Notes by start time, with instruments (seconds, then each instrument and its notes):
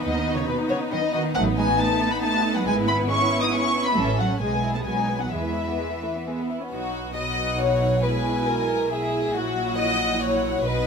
Already playing: viola section D#4, violin section B4
0.03 double bass section D#2, cello section D#3, viola section B3, violin section B3 D#5
0.17 violin section D#4
0.28 violin section F#4
0.37 cello section C#3, violin section D#4 C#5
0.48 cello section B2, violin section B3 B4
0.58 violin section D#4
0.68 cello section C#3, violin section F#4 C#5
0.79 violin section D#4
0.91 cello section D#3, violin section B3 D#5
1.02 violin section D#4
1.13 cello section D#3, violin section F#4 D#5
1.24 violin section D#4
1.35 double bass section A1, cello section F#3, violin section A3 B4 F#5, viola section D#4
1.47 violin section B3
1.57 cello section G#3, violin section D#4 G#5
1.68 violin section F#4
1.79 cello section A3, violin section D#4 A5
1.89 violin section B3
2.00 violin section A3
2.11 cello section B3, violin section B3 B5
2.21 cello section A3, violin section D#4 A5
2.33 violin section F#4
2.42 violin section D#4
2.54 cello section F#3, violin section B3 F#5
2.65 double bass section G#1, violin section G#3 G#5, cello section G#3, viola section B3 E4
2.76 violin section B3
2.87 cello section B3, violin section E4 B5
2.98 violin section B3
3.09 violin section G#3 C#6, cello section C#4
3.20 violin section B3
3.30 violin section E4
3.41 violin section B3 D#6, cello section D#4
3.52 violin section G#3 C#6, cello section C#4
3.64 violin section B3
3.76 violin section E4
3.85 cello section B3, violin section B3 B5
3.96 double bass section A1, cello section E3, violin section A3 A4 E5, viola section C#4
4.08 violin section C#4
4.18 cello section F#3, violin section F#4 F#5
4.31 violin section C#4
4.39 double bass section B1, viola section G#3 B3, cello section G#3, violin section G#3 G#4 G#5
4.53 violin section B3
4.64 violin section E4
4.74 cello section A3, violin section B3 A5
4.84 double bass section B1, viola section F#3, cello section G#3, violin section B3 B4 G#5
4.99 violin section D#4
5.09 violin section B3
5.20 cello section F#3, violin section D#4 F#5
5.30 double bass section E2, cello section E3, viola section G#3, violin section G#3 E5
5.44 violin section B3
5.54 violin section E4
5.67 violin section B3
5.78 viola section G#3, violin section G#3
5.90 violin section B3
6.02 viola section A3, violin section E4
6.15 violin section B3
6.25 violin section G#3, viola section B3
6.39 violin section B3
6.51 violin section E4
6.61 violin section B3, viola section C#4
6.71 double bass section B1, cello section B2, viola section F#3 D#4, violin section F#4
7.16 viola section F#3 D#4, violin section D#5 F#5
7.59 violin section C#5
8.04 viola section G#3 E4, violin section B4 G#5
8.48 violin section A#4
8.91 viola section G#3 E4, violin section G#4 E5
9.35 double bass section A#1, cello section A#2, viola section F#3 E4, violin section F#4 F#5
9.78 violin section D#5
10.21 viola section F#3 E4, violin section C#5
10.65 double bass section B1, cello section B2, viola section F#3 D#4, violin section B4 D#5